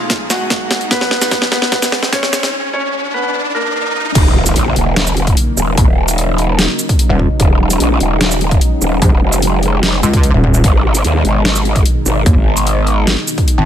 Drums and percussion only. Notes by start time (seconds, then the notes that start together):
0.10 kick, snare, closed hi-hat
0.30 snare, shaker
0.50 kick, snare, closed hi-hat
0.71 snare, closed hi-hat
0.81 closed hi-hat
0.91 kick, snare, closed hi-hat
1.01 snare
1.11 snare
1.21 snare, closed hi-hat, shaker
1.31 kick, snare, closed hi-hat
1.42 snare
1.52 snare, closed hi-hat
1.62 snare
1.72 kick, snare, closed hi-hat
1.82 snare, shaker
1.92 snare
2.03 snare
2.13 kick, snare, closed hi-hat
2.23 snare
2.33 snare, closed hi-hat, shaker
2.43 snare, closed hi-hat
4.15 kick, closed hi-hat, crash
4.46 closed hi-hat, shaker
4.56 closed hi-hat
4.76 closed hi-hat
4.96 snare, closed hi-hat
5.07 shaker
5.17 closed hi-hat
5.27 kick, closed hi-hat
5.37 closed hi-hat
5.57 shaker
5.77 kick, closed hi-hat
6.08 closed hi-hat, shaker
6.18 closed hi-hat
6.38 closed hi-hat
6.59 snare, closed hi-hat
6.79 closed hi-hat, shaker
6.89 kick, closed hi-hat
6.99 closed hi-hat
7.19 kick
7.40 kick, closed hi-hat
7.70 closed hi-hat, shaker
7.80 closed hi-hat
8.00 closed hi-hat
8.21 snare, closed hi-hat
8.31 shaker
8.41 closed hi-hat
8.51 kick, closed hi-hat
8.61 closed hi-hat
8.82 shaker
9.02 kick, closed hi-hat
9.32 closed hi-hat, shaker
9.42 closed hi-hat
9.63 closed hi-hat
9.83 snare, closed hi-hat
10.03 closed hi-hat, shaker
10.13 kick, closed hi-hat
10.23 closed hi-hat
10.44 kick
10.54 shaker
10.64 kick, closed hi-hat
10.95 closed hi-hat, shaker
11.04 closed hi-hat
11.25 closed hi-hat
11.45 snare, closed hi-hat
11.55 shaker
11.65 closed hi-hat
11.76 kick, closed hi-hat
11.86 closed hi-hat
12.06 shaker
12.26 kick, closed hi-hat
12.57 closed hi-hat, shaker
12.67 closed hi-hat
12.87 closed hi-hat
13.07 snare, closed hi-hat
13.27 closed hi-hat, shaker
13.38 kick, closed hi-hat
13.48 closed hi-hat